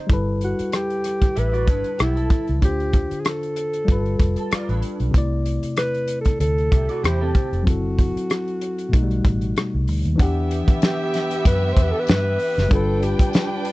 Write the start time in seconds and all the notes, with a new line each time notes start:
0.07 G1 G3 E4, kick, closed hi-hat
0.11 A4 B4
0.41 F#4, closed hi-hat
0.59 muted fingered electric bass stroke, closed hi-hat
0.72 G4, cross-stick, closed hi-hat
0.90 closed hi-hat
1.04 cross-stick, closed hi-hat
1.22 kick, closed hi-hat
1.35 A1 G4 B4 E5, closed hi-hat
1.53 F#4 D5, closed hi-hat
1.67 G1 D4 B4, kick, closed hi-hat
1.84 closed hi-hat
1.98 B1 B3 E4 G4, cross-stick, closed hi-hat
2.16 A4, closed hi-hat
2.30 kick, closed hi-hat
2.48 C#2, closed hi-hat
2.59 D2 D3 D4, kick, closed hi-hat
2.64 F4 G4 C5
2.80 closed hi-hat
2.93 kick, closed hi-hat
3.11 muted fingered electric bass stroke, closed hi-hat
3.20 G#4
3.25 A4, cross-stick, closed hi-hat
3.43 closed hi-hat
3.56 closed hi-hat
3.73 closed hi-hat
3.85 G3 F4, kick, closed hi-hat
3.89 G1 A4 B4
4.06 closed hi-hat
4.20 F1, kick, closed hi-hat
4.36 A4, closed hi-hat
4.51 F4 D5, muted fingered electric bass stroke, cross-stick, closed hi-hat
4.69 A1 D4 B4, closed hi-hat
4.82 closed hi-hat
5.00 B1, closed hi-hat
5.11 C2 C3 A3, kick, closed hi-hat
5.16 E4 D5
5.46 closed hi-hat
5.63 muted fingered electric bass stroke, closed hi-hat
5.77 B4, cross-stick, closed hi-hat
5.94 closed hi-hat
6.08 closed hi-hat
6.21 A4, closed hi-hat
6.26 kick
6.40 D2 A4, closed hi-hat
6.58 closed hi-hat
6.72 C2 G4 E5, kick, closed hi-hat
6.89 F#4 D5, closed hi-hat
7.03 E2 E4 G4 C5, cross-stick, closed hi-hat
7.21 C4 A4
7.35 kick, closed hi-hat
7.52 F1, closed hi-hat
7.63 F#3 C4 F#4
7.67 F#1 E4 A4, kick, closed hi-hat
7.99 kick, closed hi-hat
8.16 muted fingered electric bass stroke, closed hi-hat
8.30 cross-stick, closed hi-hat
8.48 closed hi-hat
8.61 closed hi-hat
8.78 closed hi-hat
8.89 B2 A3
8.93 B1 D#4 F#4, kick, closed hi-hat
9.03 G3
9.11 closed hi-hat
9.25 A1, kick, closed hi-hat
9.41 closed hi-hat
9.56 cross-stick, closed hi-hat
9.74 C2
9.87 D2, open hi-hat
10.05 D#2, closed hi-hat
10.16 E2 E3 D4, kick, closed hi-hat
10.20 B3 G4 E5 F#5
10.51 closed hi-hat
10.68 muted fingered electric bass stroke, kick, closed hi-hat
10.82 G4, snare, closed hi-hat, tambourine
11.14 snare, closed hi-hat
11.31 closed hi-hat
11.45 F#2 B4, kick, closed hi-hat
11.73 C5
11.77 E2, kick, closed hi-hat
11.82 B4
11.92 A4
12.00 B4
12.07 G2 B4, snare, closed hi-hat, tambourine
12.39 open hi-hat
12.58 F#1, snare
12.69 G1 G3 D4 B4 G5, kick, closed hi-hat
12.73 F4 A4 B4
13.03 G4, closed hi-hat
13.19 muted fingered electric bass stroke, kick, closed hi-hat
13.33 snare, closed hi-hat, tambourine
13.65 closed hi-hat